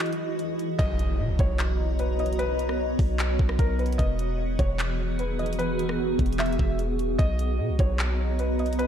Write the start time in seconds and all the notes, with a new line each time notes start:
Already playing: E3 E4 F#4 G#4 D#5
0.06 closed hi-hat
0.13 closed hi-hat
0.39 closed hi-hat
0.59 closed hi-hat
0.79 B1 B3 F#4 C#5 D#5 A#5, kick, closed hi-hat, impact
0.99 closed hi-hat
1.19 B2
1.29 B1
1.39 B1 C#5, kick, closed hi-hat
1.59 clap, closed hi-hat
1.99 B4, closed hi-hat
2.19 D#5, closed hi-hat
2.26 closed hi-hat
2.33 closed hi-hat
2.39 B4, closed hi-hat
2.59 closed hi-hat
2.69 cross-stick
2.99 B1, kick, open hi-hat
3.19 clap, closed hi-hat
3.39 B1, kick
3.49 cross-stick
3.59 B1 A#4, kick, closed hi-hat
3.79 B4, closed hi-hat
3.86 closed hi-hat
3.93 closed hi-hat
3.98 E1 D#3 E3 F#4 G#4 D#5, kick, closed hi-hat
4.19 closed hi-hat
4.59 E1 C#5, kick, closed hi-hat
4.79 clap, closed hi-hat
5.19 B4, closed hi-hat
5.39 D#5, closed hi-hat
5.46 closed hi-hat
5.53 closed hi-hat
5.59 B4, closed hi-hat
5.79 closed hi-hat
5.89 cross-stick
6.19 E1, kick, closed hi-hat
6.26 closed hi-hat
6.33 closed hi-hat
6.39 E5, clap, closed hi-hat
6.46 closed hi-hat
6.53 closed hi-hat
6.59 E1, kick
6.79 closed hi-hat
6.99 closed hi-hat
7.19 B1 F#4 C#5 D#5 A#5, kick, closed hi-hat
7.39 closed hi-hat
7.59 B2
7.69 B1
7.79 B1 C#5, kick, closed hi-hat
7.99 clap, closed hi-hat
8.39 B4, closed hi-hat
8.59 D#5, closed hi-hat
8.66 closed hi-hat
8.73 closed hi-hat
8.79 B4, closed hi-hat